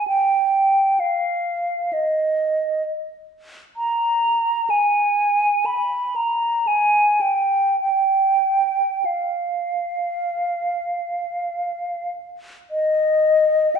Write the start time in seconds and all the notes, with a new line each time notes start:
0.08 G5
1.00 F5
1.93 D#5
3.77 A#5
4.70 G#5
5.66 B5
6.16 A#5
6.67 G#5
7.21 G5
7.81 G5
9.05 F5
12.71 D#5
13.76 G5